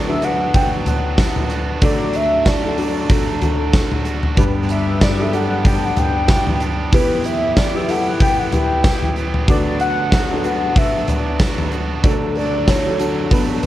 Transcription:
Already playing: D2 D3 F#3 B3 D4 F#4 B4
0.08 D4 F#4 B4 E5
0.21 B3 D4 F#4 B4 F#5, hi-hat pedal, open hi-hat
0.54 D3 F#3 B3 D4 F#4 G5, kick, hi-hat pedal, open hi-hat
0.73 F#5
0.86 F#5, floor tom, hi-hat pedal, open hi-hat
1.18 F#3 B3 D4 F#4, kick, snare, hi-hat pedal, open hi-hat, tambourine
1.36 floor tom
1.50 B3 D4 F#4, hi-hat pedal, open hi-hat
1.82 D2 D3 F#3 A3 D4 F#4 A4 D5, kick, hi-hat pedal, open hi-hat
2.14 E5, hi-hat pedal, open hi-hat
2.45 F#3 A3 D4 F#4 D5, kick, snare, hi-hat pedal, open hi-hat, tambourine
2.63 D4 F#4 A4
2.78 D4 F#4 A4, hi-hat pedal, open hi-hat
3.09 D3 F#3 A3 D4 F#4 A4, kick, hi-hat pedal, open hi-hat
3.42 D4 F#4 A4, floor tom, hi-hat pedal, open hi-hat
3.72 F#3 A3 D4 F#4, kick, snare, hi-hat pedal, open hi-hat, tambourine
3.92 floor tom
4.04 A3 D4 F#4, hi-hat pedal, open hi-hat
4.23 floor tom
4.37 G1 G2 D3 G3 B3 D4 G4 B4, kick, hi-hat pedal, open hi-hat
4.69 E5, hi-hat pedal, open hi-hat
5.01 G3 B3 D4 G4 D5, kick, snare, hi-hat pedal, open hi-hat, tambourine
5.19 D4 G4 A4 E5
5.32 G3 B3 D4 G4 A4 F#5, hi-hat pedal, open hi-hat
5.65 G2 D3 G3 B3 D4 G4 G5, kick, hi-hat pedal, open hi-hat
5.85 F#5
5.97 G5, floor tom, hi-hat pedal, open hi-hat
6.28 G3 B3 D4 G4, kick, snare, hi-hat pedal, open hi-hat, tambourine
6.47 floor tom
6.60 G3 B3 D4 G4, hi-hat pedal, open hi-hat
6.92 E2 E3 B3 E4 G4 B4, kick, hi-hat pedal, open hi-hat
7.24 E5, hi-hat pedal, open hi-hat
7.56 E3 B3 E4 G4 D5, kick, snare, hi-hat pedal, open hi-hat, tambourine
7.74 E4 G4 B4 E5
7.88 B3 E4 G4 A4 F#5, hi-hat pedal, open hi-hat
8.20 E3 B3 E4 G4 G5, kick, hi-hat pedal, open hi-hat
8.39 F#5
8.52 E4 G4 B4 G5, floor tom, hi-hat pedal, open hi-hat
8.83 E3 B3 E4 G4, kick, snare, hi-hat pedal, open hi-hat, tambourine
9.02 floor tom
9.15 B3 E4 G4, hi-hat pedal, open hi-hat
9.34 floor tom
9.47 D2 D3 F#3 B3 D4 F#4 B4 D5, kick, hi-hat pedal, open hi-hat
9.80 F#5, hi-hat pedal, open hi-hat
10.11 F#3 B3 D4 F#4, kick, snare, hi-hat pedal, open hi-hat, tambourine
10.30 D4 F#4 A4
10.43 B3 D4 F#4 B4 F#5, hi-hat pedal, open hi-hat
10.75 D3 F#3 B3 D4 F#4 E5, kick, hi-hat pedal, open hi-hat
11.08 D5, floor tom, hi-hat pedal, open hi-hat
11.39 F#3 B3 D4 F#4, kick, snare, hi-hat pedal, open hi-hat, tambourine
11.58 floor tom
11.71 B3 D4 F#4, hi-hat pedal, open hi-hat
12.03 D2 D3 F#3 A3 D4 F#4 A4, kick, hi-hat pedal, open hi-hat
12.36 D5, hi-hat pedal, open hi-hat
12.67 F#3 A3 D4 F#4 C#5, kick, snare, hi-hat pedal, open hi-hat, tambourine
12.86 D4 F#4 A4
12.99 D4 F#4 A4, hi-hat pedal, open hi-hat
13.31 B1 B2 F#3 A3 D4 F#4 A4 B4, kick, hi-hat pedal, open hi-hat
13.63 open hi-hat

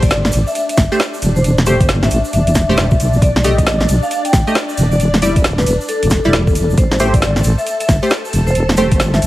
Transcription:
Already playing: D4 D5
0.03 G1 D5, kick, closed hi-hat, shaker
0.10 snare, closed hi-hat, shaker
0.25 snare, shaker
0.32 A1, open hi-hat, shaker
0.47 E5, shaker
0.55 closed hi-hat, shaker
0.69 E5, closed hi-hat, shaker
0.77 G1, kick, snare, open hi-hat, shaker
0.92 A3 G4 C5, shaker
1.00 snare, closed hi-hat, shaker
1.14 shaker
1.22 E1, open hi-hat, shaker
1.36 C5, shaker
1.44 closed hi-hat, shaker
1.58 snare, shaker
1.66 A3 G4 C5, open hi-hat, shaker
1.80 G1, kick, closed hi-hat, shaker
1.89 snare, closed hi-hat, shaker
2.03 E5, snare, shaker
2.11 A1, open hi-hat, shaker
2.24 shaker
2.33 E1 E5, closed hi-hat, shaker
2.47 closed hi-hat, shaker
2.55 kick, snare, open hi-hat, shaker
2.69 A3 G4 C5, shaker
2.77 snare, closed hi-hat, shaker
2.91 kick, shaker
3.00 B1, open hi-hat, shaker
3.13 G1, shaker
3.22 B1 D5, kick, closed hi-hat, shaker
3.36 snare, shaker
3.44 A3 G4 D#5, open hi-hat, shaker
3.58 A1 D#5, kick, closed hi-hat, shaker
3.66 snare, closed hi-hat, shaker
3.80 snare, shaker
3.89 B1, open hi-hat, shaker
4.03 F5, shaker
4.11 closed hi-hat, shaker
4.25 G5, closed hi-hat, shaker
4.33 A1, kick, snare, open hi-hat, shaker
4.47 A3 G4 D#5, shaker
4.55 snare, closed hi-hat, shaker
4.69 shaker
4.78 E1, open hi-hat, shaker
4.92 D5, shaker
5.00 closed hi-hat, shaker
5.14 snare, shaker
5.22 G3 E4 D5, open hi-hat, shaker
5.36 D1, kick, closed hi-hat, shaker
5.44 snare, closed hi-hat, shaker
5.58 B4, snare, shaker
5.66 E1, open hi-hat, shaker
5.81 shaker
5.88 A4, closed hi-hat, shaker
6.03 E1, closed hi-hat, shaker
6.10 kick, snare, open hi-hat, shaker
6.24 E1 G3 E4 D5, shaker
6.33 snare, closed hi-hat, shaker
6.47 kick, shaker
6.55 open hi-hat, shaker
6.70 shaker
6.78 A1 A4 C5 A5, kick, closed hi-hat, shaker
6.91 snare, shaker
6.99 A3 G4 C5, open hi-hat, shaker
7.14 G1 D5, kick, closed hi-hat, shaker
7.22 snare, closed hi-hat, shaker
7.36 snare, shaker
7.44 A1, open hi-hat, shaker
7.58 E5, shaker
7.66 closed hi-hat, shaker
7.80 E5, closed hi-hat, shaker
7.89 G1, kick, snare, open hi-hat, shaker
8.03 A3 G4 C5, shaker
8.10 snare, closed hi-hat, shaker
8.25 shaker
8.33 E1, open hi-hat, shaker
8.47 C5, shaker
8.55 closed hi-hat, shaker
8.69 snare, shaker
8.77 A3 G4 C5, open hi-hat, shaker
8.91 G1, kick, closed hi-hat, shaker
9.00 snare, closed hi-hat, shaker
9.14 E5, snare, shaker
9.22 A1, open hi-hat, shaker

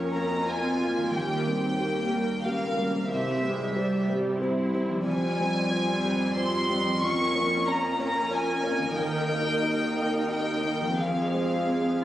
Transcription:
Already playing: F2 F3 A#3 C#4 F4 A#4 C#5
0.14 A#3 A#4 A#5
0.48 C4 F4 A#4 G#5
0.80 A#3 A#4
0.97 D#3
1.01 G3
1.06 A#3
1.11 D#2 A#3 G4 A#4 G5
1.15 D#2
1.46 G3 C4 A#4
1.79 A#3 G4 A#4
2.12 G3 A#4
2.44 C#2 A#3 G4 A#4 F5
2.77 G3 A#3 A#4
2.94 C3
2.98 G3
3.02 C4
3.07 C2 C4 E4 G4 E5
3.42 G3 G#3 C5
3.74 G3 G4 C5
4.09 G3 C5
4.40 C4 E4 G4 C5
4.74 G3 C5
4.88 F3
4.93 G3
4.98 C4
5.02 F2 G3 C4 F4 G#5
5.07 F2
5.40 G3 C5
5.71 F4 C5
6.04 G3 C5
6.36 F4 C5 C6
6.69 G3 C5
6.84 F3 A#3
6.93 C#4
6.98 C#4 F4 A#4 C#6
7.03 F2
7.35 A#3 C#5
7.67 F4 C#5 A#5
7.99 A#3 C#5 A#5
8.30 F4 C#5 G#5
8.63 A#3 C#5
8.79 D#3
8.83 A#3
8.88 D#4
8.92 D#2 G4 G5
8.96 D#2 D#4
9.29 A#3 D#5
9.62 G4 D#5
9.95 A#3 D#5
10.27 G4 D#5 G5
10.64 A#3 D#5
10.81 F3
10.85 G#3
10.90 C4
10.95 C4 G#4
10.99 F2 F5
11.33 G#3 C5
11.69 G#4 C5

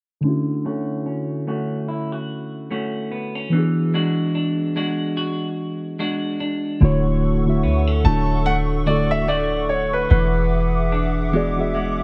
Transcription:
0.21 D3 A3
0.25 C#4 E4
0.29 F#4
0.65 A3 C#4 F#4
1.06 C#4
1.47 A3 C#4 F#4
1.88 E4
2.12 F#4
2.71 A3 C#4 F#4
3.12 B3
3.35 C#4
3.49 E3 B3
3.54 D4 F#4
3.58 G#4
3.94 G#3 D4 F#4
4.35 D4
4.76 G#3 D4 F#4
5.17 F#4
5.99 G#3 D4 F#4
6.40 D4
6.80 D1 D3 A3 E4 F#4 A4 F#5 C#6
6.84 C#5
7.45 D3 A3 E4 F#4
7.49 E5
7.63 D2 B3
7.87 C#4
8.03 D1 D3 A3 E4 F#4 A5
8.08 D4
8.46 A3 F#5
8.86 D3 A3 E4 F#4 D5
8.90 A4
9.11 E5
9.28 A3 F#4 D5
9.69 C#5
9.93 B4
10.10 E1 E3 G#4 B4 E5 D6
10.92 D4
11.32 E3 G#3 B3 F#4 G#4
11.36 D5
11.56 E3 B3 F#4 G#4
11.60 E5
11.74 G#3

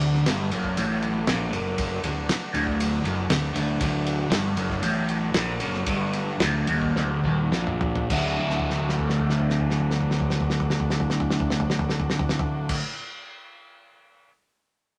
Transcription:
Already playing: D1 D2 F#3 A3 D4 F#4
0.01 ride, high conga
0.14 snare, high conga
0.26 G1 G2, snare, ride
0.51 F#1 F#2, ride, low conga
0.64 kick
0.77 A1 A2, ride, low conga
1.02 ride, low conga
1.16 high conga
1.27 A#1 A#2, snare, ride
1.53 F#1 F#2, ride, high conga
1.66 high conga
1.78 kick, ride
2.03 D1 D2, ride, high conga
2.29 snare, ride
2.53 D1 D2, ride, low conga
2.67 kick
2.80 ride, low conga
3.04 F#1 F#2, ride, low conga
3.17 high conga
3.29 D1 D2, snare, ride
3.54 D1 D2, ride, high conga, low conga
3.68 high conga
3.81 D1 D2, kick, ride
4.06 ride, high conga
4.18 high conga
4.30 G1 G2, snare, ride
4.56 F#1 F#2, ride, low conga
4.70 kick, snare
4.82 A1 A2, ride, low conga
5.08 ride, low conga
5.22 high conga
5.34 A#1 A#2, snare, ride
5.60 F#1 F#2, ride, high conga, low conga
5.73 snare, high conga
5.86 G1 G2, kick, ride
6.13 ride, high conga
6.28 high conga
6.40 D1 D2, snare, ride
6.67 D#1 D#2, ride, low conga
6.82 kick
6.95 D1 D2, snare, low conga
7.24 D#1 D#2, kick, low conga
7.39 high conga
7.52 A#1 A#2, snare
7.67 mid tom
7.81 floor tom, high conga, low conga
7.96 floor tom, high conga
8.09 D1 D2 A2 D3 F#3 A3 D4 F#4, kick, crash, high conga
8.13 F#4
8.40 floor tom
8.50 snare
8.59 floor tom
8.70 snare
8.80 floor tom
8.89 snare
8.99 floor tom
9.09 snare
9.19 floor tom
9.30 snare
9.39 floor tom
9.50 snare
9.60 floor tom
9.70 snare
9.80 floor tom
9.91 snare
10.01 floor tom
10.11 snare
10.20 floor tom
10.30 snare
10.40 floor tom
10.50 snare
10.60 floor tom
10.70 snare
10.80 floor tom
10.90 snare
11.00 floor tom
11.10 snare
11.20 floor tom
11.30 snare
11.40 floor tom
11.50 snare
11.60 floor tom
11.70 snare
11.79 floor tom
11.89 snare
12.00 floor tom
12.10 snare
12.19 floor tom
12.29 snare
12.39 floor tom
12.69 kick, crash

